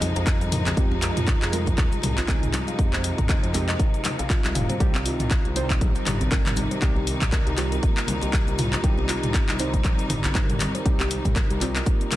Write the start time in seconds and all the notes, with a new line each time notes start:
Already playing: C3 F3 G#3 D#4
0.01 F2 D#5, open hi-hat, muted conga, djembe tone, high conga, low conga, cabasa
0.16 F2 C5, closed hi-hat, djembe slap, cabasa
0.26 kick, clap, closed hi-hat, muted conga, cabasa
0.40 closed hi-hat, high conga, djembe tone, cabasa
0.52 A#4, mid tom, open hi-hat, low conga, cabasa
0.66 C4, clap, closed hi-hat, muted conga, djembe tone, high conga, low conga, cabasa
0.77 F2 G#3 C4 D#4 F4 G4, kick, closed hi-hat, cabasa
0.91 muted conga, djembe bass
1.02 A#4, clap, open hi-hat, djembe tone, cabasa
1.16 F2 F4, closed hi-hat, mid tom, muted conga, cabasa
1.27 kick, clap, closed hi-hat, djembe tone, low conga, cabasa
1.42 F2 G#4, clap, closed hi-hat
1.52 G#3 C4 D#4 F4 A#4, open hi-hat, muted conga, high conga, cabasa
1.66 kick, closed hi-hat, djembe tone, cabasa
1.78 D#2, kick, clap, closed hi-hat, muted conga, high conga, cabasa
1.92 closed hi-hat, djembe tone, cabasa
2.02 C2, mid tom, open hi-hat, muted conga, djembe slap, high conga, cabasa
2.17 F4, clap, closed hi-hat, djembe bass, cabasa
2.28 G#3 C4 D#4 G#4 D#5, kick, clap, closed hi-hat, muted conga, djembe tone, low conga, cabasa
2.42 closed hi-hat, mid tom, high conga, cabasa
2.53 clap, open hi-hat, djembe tone, high conga, cabasa
2.67 F5, closed hi-hat, muted conga, cabasa
2.79 F2 G#3 C4 D#4 G4, kick, closed hi-hat, cabasa
2.93 C5, clap, muted conga, djembe tone, djembe bass
3.04 open hi-hat, cabasa
3.18 F2, kick, closed hi-hat, mid tom, muted conga, djembe tone, cabasa
3.28 D#5, kick, clap, closed hi-hat, low conga, cabasa
3.43 F2 C5, closed hi-hat
3.54 G#3 C4 D#4 G4 A#4, clap, open hi-hat, muted conga, djembe tone, cabasa
3.68 D#5, clap, closed hi-hat, cabasa
3.79 D#4, kick, closed hi-hat, muted conga, djembe tone, cabasa
3.94 closed hi-hat, cabasa
4.04 D#4, clap, open hi-hat, muted conga, high conga, low conga, cabasa
4.19 F5, closed hi-hat, djembe slap, djembe tone, cabasa
4.30 F4, kick, clap, closed hi-hat, cabasa
4.44 C2, clap, closed hi-hat, high conga, djembe tone, cabasa
4.55 F1 F5, mid tom, open hi-hat, low conga, cabasa
4.69 C5, closed hi-hat, muted conga, high conga, low conga, cabasa
4.80 C2 D#3 G3 C4 D#4 G4, kick, closed hi-hat, cabasa
4.95 clap, muted conga, djembe tone, djembe bass
5.05 F4, open hi-hat, cabasa
5.20 C2 C4, closed hi-hat, mid tom, muted conga, cabasa
5.30 kick, clap, closed hi-hat, djembe tone, low conga, cabasa
5.45 C2 D#4, closed hi-hat
5.56 G3 C4 D#4 C5, open hi-hat, muted conga, djembe tone, high conga, cabasa
5.70 kick, clap, closed hi-hat, cabasa
5.81 A#1, kick, closed hi-hat, muted conga, high conga, cabasa
5.95 closed hi-hat, djembe tone, cabasa
6.06 G1, clap, mid tom, open hi-hat, muted conga, djembe slap, high conga, cabasa
6.21 C4, closed hi-hat, djembe tone, djembe bass, cabasa
6.31 G3 C4 D#4 A#4, kick, clap, closed hi-hat, muted conga, low conga, cabasa
6.45 clap, closed hi-hat, mid tom, high conga, cabasa
6.56 open hi-hat, high conga, djembe tone, cabasa
6.71 C5, closed hi-hat, muted conga, cabasa
6.82 C2 G3 C4 D#4 G4, kick, clap, closed hi-hat, djembe tone, cabasa
6.96 G4, muted conga, djembe bass
7.07 open hi-hat, cabasa
7.22 C2, kick, clap, closed hi-hat, mid tom, muted conga, djembe tone, cabasa
7.32 A#4, kick, clap, closed hi-hat, low conga, cabasa
7.47 C2 G4, closed hi-hat, djembe tone
7.58 G3 C4 D#4 F4 G4, clap, open hi-hat, muted conga, cabasa
7.72 A#4, closed hi-hat, cabasa
7.83 A#3, kick, closed hi-hat, muted conga, djembe tone, cabasa
7.97 clap, closed hi-hat, cabasa
8.07 C2 A#4, open hi-hat, muted conga, djembe tone, high conga, low conga, cabasa
8.21 C2 G4, closed hi-hat, djembe slap, cabasa
8.33 kick, clap, closed hi-hat, muted conga, cabasa
8.47 closed hi-hat, high conga, djembe tone, cabasa
8.58 F4, mid tom, open hi-hat, low conga, cabasa
8.72 G3, clap, closed hi-hat, muted conga, djembe tone, high conga, low conga, cabasa
8.84 C2 G3 C4 D#4 G4, kick, closed hi-hat, cabasa
8.98 muted conga, djembe bass
9.09 F4, clap, open hi-hat, djembe tone, cabasa
9.23 C2 C4, closed hi-hat, mid tom, muted conga, cabasa
9.34 kick, clap, closed hi-hat, djembe tone, low conga, cabasa
9.49 C2 D#4, clap, closed hi-hat
9.59 G3 C4 D#4 C5, open hi-hat, muted conga, high conga, cabasa
9.73 kick, closed hi-hat, djembe tone, cabasa
9.84 A#1, kick, clap, closed hi-hat, muted conga, high conga, cabasa
9.98 closed hi-hat, djembe tone, cabasa
10.10 G1, mid tom, open hi-hat, djembe slap, muted conga, high conga, cabasa
10.24 C4, clap, closed hi-hat, djembe bass, cabasa
10.35 G3 C4 D#4 A#4, kick, clap, closed hi-hat, muted conga, djembe tone, low conga, cabasa
10.49 closed hi-hat, mid tom, high conga, cabasa
10.60 clap, open hi-hat, high conga, djembe tone, cabasa
10.75 C5, closed hi-hat, muted conga, cabasa
10.86 C2 G3 C4 D#4 G4, kick, closed hi-hat, cabasa
11.00 G4, clap, muted conga, djembe tone, djembe bass, cabasa
11.11 open hi-hat, cabasa
11.25 C2, kick, closed hi-hat, mid tom, muted conga, djembe tone, cabasa
11.36 A#4, kick, clap, closed hi-hat, low conga, cabasa
11.50 C2 G4, closed hi-hat, cabasa
11.61 G3 C4 D#4 F4 G4, clap, open hi-hat, muted conga, high conga, djembe tone, cabasa
11.76 A#4, clap, closed hi-hat, djembe slap, cabasa
11.86 A#3, kick, closed hi-hat, muted conga, cabasa
12.01 closed hi-hat, cabasa
12.11 C2 A#4, clap, open hi-hat, muted conga, high conga, low conga, cabasa